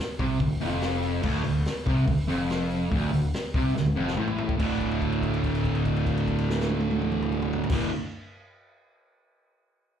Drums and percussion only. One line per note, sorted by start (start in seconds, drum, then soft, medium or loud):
0.19 kick loud
0.19 open hi-hat medium
0.40 kick loud
0.40 open hi-hat medium
0.61 open hi-hat medium
0.81 snare loud
0.81 open hi-hat medium
1.03 open hi-hat medium
1.23 kick loud
1.23 crash loud
1.35 snare soft
1.44 open hi-hat medium
1.65 snare loud
1.65 open hi-hat medium
1.86 kick loud
1.86 open hi-hat medium
2.08 kick loud
2.08 open hi-hat medium
2.29 open hi-hat medium
2.50 snare loud
2.50 open hi-hat medium
2.70 open hi-hat medium
2.92 kick loud
2.92 open hi-hat medium
3.13 open hi-hat medium
3.34 snare loud
3.34 open hi-hat medium
3.54 kick loud
3.54 open hi-hat medium
3.77 snare medium
3.86 high tom medium
3.97 mid tom medium
4.08 snare medium
4.17 mid tom medium
4.28 mid tom medium
4.38 floor tom loud
4.49 kick medium
4.59 kick loud
4.59 crash medium
4.80 kick medium
4.80 crash medium
4.91 crash soft
5.01 kick medium
5.01 crash soft
5.12 crash soft
5.22 kick medium
5.22 crash soft
5.34 crash soft
5.44 kick medium
5.44 crash medium
5.55 crash soft
5.65 kick medium
5.65 crash medium
5.75 crash medium
5.85 kick medium
5.85 crash medium
5.96 crash medium
6.06 kick medium
6.06 crash medium
6.17 crash medium
6.27 kick medium
6.27 crash medium
6.39 crash medium
6.50 snare loud
6.60 snare medium
6.70 high tom medium
6.81 high tom loud
6.91 high tom loud
7.02 mid tom loud
7.12 mid tom loud
7.22 mid tom medium
7.32 mid tom loud
7.42 mid tom loud
7.53 floor tom loud
7.64 floor tom loud
7.70 kick loud
7.70 snare loud
7.70 crash loud